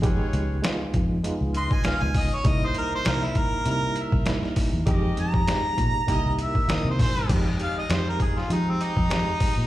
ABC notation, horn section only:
X:1
M:4/4
L:1/16
Q:"Swing 16ths" 1/4=99
K:Fm
V:1 name="Horn section"
[F_cd]4 z6 [Fce]3 z3 | [B^d]4 z6 [B=e]3 z3 | [Ge]4 z4 [=EB^d]2 [B=e]3 z3 | [Ge]4 z6 [Ge]3 z3 |]